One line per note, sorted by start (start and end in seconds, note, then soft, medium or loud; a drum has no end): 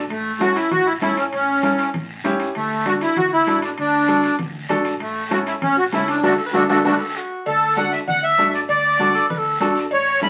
0.10 0.59 A1 medium
0.10 0.42 A3 loud
0.10 high conga soft
0.10 high timbale medium
0.10 long guiro medium
0.40 0.62 C#4 medium
0.40 0.62 E4 medium
0.40 0.57 F#4 loud
0.40 0.62 A4 medium
0.40 high conga medium
0.40 high timbale medium
0.40 short guiro medium
0.56 0.70 E4 medium
0.56 high timbale medium
0.56 short guiro medium
0.71 0.96 A1 medium
0.71 0.87 F#4 loud
0.71 high conga soft
0.71 low conga medium
0.71 high timbale medium
0.71 long guiro medium
0.86 0.93 E4 loud
1.01 1.26 E2 medium
1.01 1.23 C#4 medium
1.01 1.16 E4 medium
1.01 1.23 E4 medium
1.01 1.24 A4 medium
1.01 high conga medium
1.01 high timbale medium
1.01 short guiro medium
1.17 1.24 C#4 medium
1.17 high timbale medium
1.17 short guiro medium
1.32 1.82 A1 medium
1.32 1.90 C#4 medium
1.32 high conga soft
1.32 high timbale medium
1.32 long guiro medium
1.63 1.84 C#4 medium
1.63 1.85 E4 medium
1.63 1.85 A4 medium
1.63 high conga medium
1.63 high timbale medium
1.63 short guiro medium
1.78 high timbale medium
1.78 short guiro medium
1.94 2.19 A1 loud
1.94 high conga soft
1.94 low conga medium
1.94 high timbale medium
1.94 long guiro medium
2.24 2.49 E2 loud
2.24 2.46 C#4 medium
2.24 2.46 E4 medium
2.24 2.46 G4 medium
2.24 high conga medium
2.24 high timbale medium
2.24 short guiro medium
2.40 high timbale medium
2.40 short guiro medium
2.55 3.04 D2 medium
2.55 2.87 A3 loud
2.55 high conga soft
2.55 high timbale medium
2.55 long guiro medium
2.85 3.07 D4 medium
2.85 3.07 F#4 medium
2.85 2.93 F#4 loud
2.85 3.07 A4 medium
2.85 high conga medium
2.85 high timbale medium
2.85 short guiro medium
3.01 3.17 E4 medium
3.01 high timbale medium
3.01 short guiro medium
3.16 3.41 D2 loud
3.16 3.31 F#4 loud
3.16 high conga soft
3.16 low conga medium
3.16 high timbale medium
3.16 long guiro medium
3.33 3.61 E4 loud
3.47 3.72 A1 medium
3.47 3.68 D4 medium
3.47 3.69 F#4 medium
3.47 3.69 A4 medium
3.47 high conga medium
3.47 high timbale medium
3.47 short guiro medium
3.62 3.70 D4 medium
3.62 high timbale medium
3.62 short guiro medium
3.77 4.27 D2 medium
3.77 4.36 D4 medium
3.77 high conga soft
3.77 high timbale medium
3.77 long guiro medium
4.08 4.30 D4 medium
4.08 4.30 F#4 medium
4.08 4.30 A4 medium
4.08 high conga medium
4.08 high timbale medium
4.08 short guiro medium
4.24 high timbale medium
4.24 short guiro medium
4.39 4.64 D2 loud
4.39 high conga soft
4.39 low conga medium
4.39 high timbale medium
4.39 long guiro medium
4.69 4.94 A1 medium
4.69 4.91 D4 medium
4.69 4.91 F#4 medium
4.69 4.91 A4 loud
4.69 high conga medium
4.69 low conga medium
4.69 high timbale medium
4.69 short guiro medium
4.85 high timbale medium
4.85 short guiro medium
5.00 5.49 A1 medium
5.00 5.32 A3 loud
5.00 high conga soft
5.00 high timbale medium
5.00 long guiro medium
5.31 5.52 C#4 medium
5.31 5.53 E4 medium
5.31 5.39 F#4 loud
5.31 5.53 A4 medium
5.31 high conga medium
5.31 high timbale medium
5.31 short guiro medium
5.46 5.54 E4 medium
5.46 high timbale medium
5.46 short guiro medium
5.62 5.87 A1 loud
5.62 5.76 C#4 medium
5.62 high conga soft
5.62 low conga medium
5.62 high timbale medium
5.62 long guiro medium
5.78 5.84 F#4 loud
5.92 6.17 C#2 loud
5.92 6.14 C#4 medium
5.92 6.14 E4 medium
5.92 6.09 E4 medium
5.92 6.14 A4 medium
5.92 high conga medium
5.92 high timbale medium
5.92 low timbale medium
5.92 short guiro medium
6.08 6.22 D4 medium
6.08 high timbale medium
6.08 short guiro medium
6.23 6.35 D2 medium
6.23 6.33 A3 medium
6.23 6.33 D4 medium
6.23 6.33 F#4 medium
6.23 6.33 A4 medium
6.23 high conga medium
6.23 high timbale medium
6.23 long guiro loud
6.38 6.46 A4 medium
6.46 6.55 B4 loud
6.53 6.65 D2 medium
6.53 6.63 A3 medium
6.53 6.63 D4 medium
6.53 6.64 D4 medium
6.53 6.63 F#4 medium
6.53 6.64 F#4 medium
6.53 6.68 A4 loud
6.53 6.64 A4 medium
6.53 high conga loud
6.53 high timbale loud
6.53 long guiro medium
6.69 6.81 D2 medium
6.69 6.79 A3 medium
6.69 6.79 D4 medium
6.69 6.79 F#4 medium
6.69 6.86 A4 loud
6.69 6.79 A4 medium
6.69 high conga medium
6.69 high timbale loud
6.69 long guiro loud
6.84 6.96 D2 medium
6.84 6.95 A3 medium
6.84 6.95 D4 medium
6.84 6.95 F#4 medium
6.84 6.95 A4 medium
6.84 7.02 B4 medium
6.84 high conga loud
6.84 high timbale medium
6.84 long guiro loud
7.00 7.18 A4 medium
7.16 7.46 F#4 medium
7.46 7.95 D2 loud
7.46 7.78 A4 medium
7.46 cowbell loud
7.46 high conga soft
7.46 long guiro medium
7.77 7.98 D4 medium
7.77 7.99 F#4 medium
7.77 7.99 A4 medium
7.77 7.92 F#5 loud
7.77 cowbell medium
7.77 high conga medium
7.77 short guiro medium
7.92 7.99 E5 medium
7.92 short guiro medium
8.07 8.32 D2 loud
8.07 8.23 F#5 loud
8.07 cowbell medium
8.07 high conga soft
8.07 low conga medium
8.07 long guiro medium
8.23 8.48 E5 loud
8.38 8.63 A1 medium
8.38 8.59 D4 medium
8.38 8.60 F#4 medium
8.38 8.60 A4 medium
8.38 cowbell medium
8.38 high conga medium
8.38 short guiro medium
8.49 8.53 E5 medium
8.53 8.60 D5 medium
8.53 short guiro medium
8.68 9.18 D2 medium
8.68 9.26 D5 medium
8.68 cowbell medium
8.68 high conga soft
8.68 long guiro medium
8.99 9.21 D4 medium
8.99 9.14 F#4 medium
8.99 9.21 F#4 medium
8.99 9.21 A4 medium
8.99 cowbell medium
8.99 high conga medium
8.99 short guiro medium
9.14 9.29 A4 loud
9.14 short guiro medium
9.30 9.55 D2 loud
9.30 9.39 B4 loud
9.30 cowbell medium
9.30 high conga soft
9.30 low conga medium
9.30 long guiro medium
9.37 9.60 A4 loud
9.60 9.85 E2 loud
9.60 9.82 D4 medium
9.60 9.82 F#4 medium
9.60 9.82 A4 medium
9.60 9.82 A4 loud
9.60 cowbell medium
9.60 high conga medium
9.60 short guiro medium
9.76 short guiro medium
9.91 10.29 A1 medium
9.91 10.21 C#5 loud
9.91 cowbell loud
9.91 high conga soft
9.91 long guiro medium
10.21 10.29 C#4 medium
10.21 10.29 E4 medium
10.21 10.29 A4 medium
10.21 10.29 B5 loud
10.21 cowbell medium
10.21 high conga medium
10.21 short guiro medium